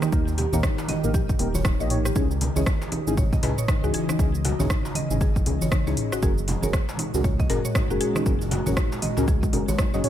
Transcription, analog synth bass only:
0.13 D#2
0.53 D#2
1.04 A#1
1.40 D#1
1.80 A#1
2.16 C#2
2.56 C#2
3.07 G#1
3.43 C#2
3.84 C#2
4.19 C#2
4.60 C#2
5.11 G#1
5.46 C#2
5.87 C#2
6.23 F#1
6.63 F#1
7.14 C#2
7.50 F#1
7.90 F#1
8.26 F#1
8.67 F#1
9.17 C#2
9.53 F#1
9.94 F#1

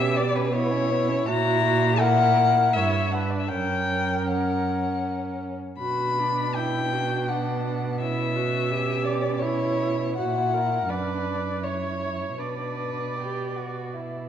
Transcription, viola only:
Already playing: G4
0.55 E4
1.28 F#4
1.65 F#4
2.01 A#4
2.76 C#5
3.14 B4
3.52 A#4
5.81 F#4
6.19 D4
6.57 E4
6.93 F#4
7.29 D4
8.02 E4
8.36 F#4
8.71 G4
9.42 E4
10.19 F#4
10.54 A#4
10.91 B4
11.63 C#5
12.40 D5

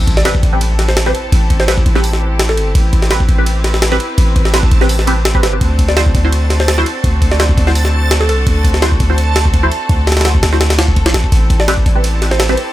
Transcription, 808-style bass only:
Already playing: A1
0.43 A1
1.32 A1
1.86 A1
2.57 G1
2.75 A1
3.29 A1
4.18 A1
4.72 A1
5.43 G1
5.61 D2
6.15 D2
7.04 D2
7.58 D2
8.29 C2
8.47 D2
9.00 D2
9.89 D2
10.43 D2
11.06 A1
11.14 A1
11.32 A1
11.86 A1

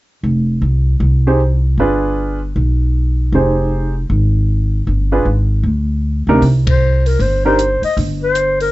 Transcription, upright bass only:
0.23 F1
0.62 C2
1.00 C2
1.77 G1
2.56 B1
3.32 F1
4.10 G#1
4.87 G1
5.25 G#1
5.63 D2
6.27 D2
6.42 C2
7.19 G1
7.82 muted upright bass stroke
7.97 G1

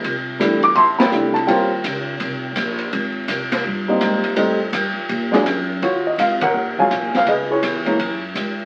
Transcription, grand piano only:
0.40 G3 A3 D4 E4
0.64 D6
0.76 E5 A5 C6
0.99 E5 G5 B5
1.11 G3 A3 D4 E4
1.34 A5
1.47 G3 C4 C#4 F4 G5
1.51 A#4 C#5
3.88 G3 A#3 C4 D#4
4.36 G3 A3 C4 D#4
5.31 F#3 G#3 D4 G#4
5.83 F4 F#4 C#5
6.07 D#5
6.20 F5
6.42 A#4 C#5 F#5
6.79 F#3 G#3 C#4 F4 C#5 F5 G#5
7.17 F5
7.28 G#4 B4 D#5
7.50 E4 G#4 C#5
7.85 E3 G#3 A#3 C#4

